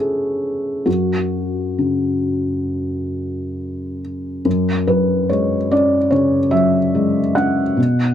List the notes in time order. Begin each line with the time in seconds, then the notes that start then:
Already playing: C#3 A3 G#4 A4 B4
0.86 F#2 F#4
1.79 C#3
4.45 F#2
4.87 F#3 B4
5.29 G#3 C#5
5.71 C#4 D5
6.11 C#3 C#5
6.51 F#3 E5
6.95 G#3
7.35 C#4 F#5
7.77 B2